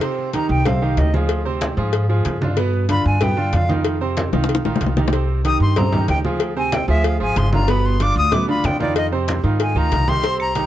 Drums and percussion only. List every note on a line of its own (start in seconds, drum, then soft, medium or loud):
0.01 cowbell loud
0.01 high conga soft
0.19 high conga soft
0.33 cowbell medium
0.33 high conga medium
0.50 high conga soft
0.66 cowbell medium
0.66 high conga soft
0.66 low conga medium
0.82 high conga soft
0.97 cowbell medium
0.97 high conga medium
1.14 high conga medium
1.29 cowbell loud
1.29 high conga soft
1.46 high conga soft
1.61 cowbell medium
1.61 high conga loud
1.78 high conga soft
1.93 cowbell medium
1.93 high conga soft
2.10 high conga soft
2.25 cowbell medium
2.25 high conga medium
2.42 high conga medium
2.57 cowbell loud
2.57 high conga soft
2.73 high conga soft
2.89 cowbell medium
2.89 high conga medium
3.05 high conga soft
3.21 cowbell loud
3.21 high conga soft
3.21 low conga medium
3.37 high conga soft
3.53 cowbell medium
3.53 high conga medium
3.70 high conga medium
3.85 cowbell loud
4.02 high conga soft
4.17 cowbell medium
4.17 high conga medium
4.33 high bongo medium
4.33 high conga soft
4.44 high bongo loud
4.49 cowbell loud
4.49 high conga soft
4.55 high bongo loud
4.65 high bongo medium
4.65 high conga soft
4.76 low bongo loud
4.81 cowbell medium
4.81 high conga medium
4.86 low bongo medium
4.97 low bongo medium
4.97 high conga medium
5.08 low bongo loud
5.13 cowbell loud
5.13 high conga soft
5.29 high conga soft
5.45 cowbell medium
5.45 high conga medium
5.61 high conga soft
5.76 cowbell loud
5.76 high conga soft
5.76 low conga medium
5.92 high conga soft
5.92 low conga medium
6.08 cowbell medium
6.08 high conga medium
6.25 high conga medium
6.40 cowbell loud
6.40 high conga soft
6.57 high conga soft
6.72 cowbell medium
6.72 high conga medium
6.89 high conga soft
7.04 cowbell loud
7.04 high conga soft
7.20 high conga soft
7.36 cowbell medium
7.36 high conga medium
7.53 high conga medium
7.68 cowbell loud
7.68 high conga soft
7.85 high conga soft
8.00 cowbell medium
8.00 high conga medium
8.16 high conga soft
8.32 cowbell loud
8.32 high conga soft
8.32 low conga medium
8.49 high conga soft
8.64 cowbell medium
8.64 high conga medium
8.80 high conga medium
8.96 cowbell loud
8.96 high conga soft
9.13 high conga soft
9.28 cowbell medium
9.28 high conga medium
9.45 high conga soft
9.60 cowbell loud
9.60 high conga soft
9.76 high conga soft
9.92 cowbell medium
9.92 high conga medium
10.08 high conga medium
10.24 cowbell loud
10.24 high conga soft
10.40 high conga soft
10.40 claves medium
10.55 cowbell medium
10.55 high conga medium